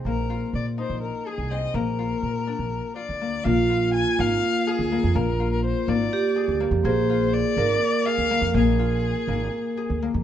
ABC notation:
X:1
M:7/8
L:1/16
Q:1/4=124
K:Bbmix
V:1 name="Violin"
B4 d2 c2 B2 A2 e2 | B8- B2 d4 | f4 a2 f4 A4 | B3 B c2 d6 z2 |
c4 d6 f4 | A12 z2 |]
V:2 name="Vibraphone"
z12 z2 | z12 z2 | F12- F2- | F8 G6 |
A6 B8- | B12 z2 |]
V:3 name="Harp"
B,2 F4 E4 A2 C2 | B,2 F4 D4 F2 B,2 | B,2 F4 B,4 A2 B,2 | B,2 F4 B,4 A2 B,2 |
B,2 F4 B,4 A2 B,2 | B,2 F4 B,4 A2 B,2 |]
V:4 name="Upright bass" clef=bass
B,,,4 B,,3 B,,,2 z2 C,,3 | B,,,4 B,,3 B,,,2 z2 D,,3 | B,,,6 A,,,2 z3 D,,2 F,, | B,,,6 A,,,2 z3 D,,2 F,, |
B,,,6 A,,,2 z3 D,,2 F,, | B,,,6 A,,,2 z3 D,,2 F,, |]